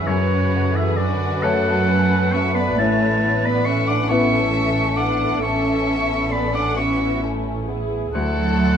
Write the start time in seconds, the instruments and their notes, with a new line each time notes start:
0.07 double bass section F#2, grand piano F#2, cello section C#3, violin section C#4 F#4, viola section B4, oboe C#5
0.52 violin section A3 F#4
0.75 cello section E3, violin section G#4, oboe E5
0.97 cello section D3, violin section C#4 F#4, oboe D5
1.43 cello section F#3, grand piano A3 A4 C#5, violin section A3 F#4 A4, oboe F#5
1.88 violin section C#4
2.32 violin section A3 F#4 E5, cello section C#4, oboe C#6
2.55 cello section B3, violin section D5, oboe B5
2.77 double bass section A1, grand piano A2, cello section A3, violin section A3 C#4 C#5, oboe A5
3.24 violin section B3 E4
3.44 cello section B3, violin section D5, oboe B5
3.65 violin section A3 C#4 E5, cello section C#4, oboe C#6
3.88 cello section D4, violin section F#5, oboe D6
4.09 violin section B3 E4 E5, grand piano B3 E4 B4, cello section C#4, viola section A4, oboe C#6
4.55 violin section A3 C#4
4.97 violin section B3 E4 F#5, cello section D4, oboe D6
5.42 double bass section A1, violin section A3 C#4 E5, cello section C#4, oboe C#6
5.88 violin section B3 E4
6.31 violin section A3 C#4 D5, cello section B3, oboe B5
6.54 cello section D4, violin section F#5, oboe D6
6.77 violin section B3 E4 E5, cello section C#4, viola section F#4, oboe C#6
7.22 violin section A3 C#4, viola section E4
7.68 violin section B3 E4, viola section G#4
8.14 double bass section D2, grand piano D2, cello section F#3, viola section A3, violin section A3 E4 A4, oboe F#5